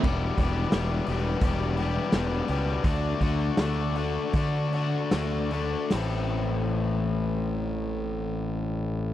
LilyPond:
<<
  \new Staff \with { instrumentName = "Overdriven electric guitar" } { \time 4/4 \key a \dorian \tempo 4 = 79 <e, b, e g b g'>8 <e, b, e g b g'>8 <e, b, e g b g'>8 <e, b, e g b g'>8 <e, b, e g b g'>8 <e, b, e g b g'>8 <e, b, e g b g'>8 <e, b, e g b g'>8 | <d a d' fis'>8 <d a d' fis'>8 <d a d' fis'>8 <d a d' fis'>8 <d a d' fis'>8 <d a d' fis'>8 <d a d' fis'>8 <d a d' fis'>8 | <a, e c' e' a'>1 | }
  \new Staff \with { instrumentName = "Fingered electric bass" } { \clef bass \time 4/4 \key a \dorian e,,8 e,,8 e,,8 e,,8 e,,4 e,,8 cis,8 | d,8 d,8 d,4 d4 d,4 | a,,1 | }
  \new DrumStaff \with { instrumentName = "Drums" } \drummode { \time 4/4 <cymc bd>8 <hho bd>8 <hho sn>8 hho8 <hho bd>8 hho8 <hho sn>8 hho8 | <hho bd>8 <hho bd>8 <hho sn>8 hho8 <hho bd>8 hho8 <hho sn>8 hho8 | <hho sn>4 r4 r4 r4 | }
>>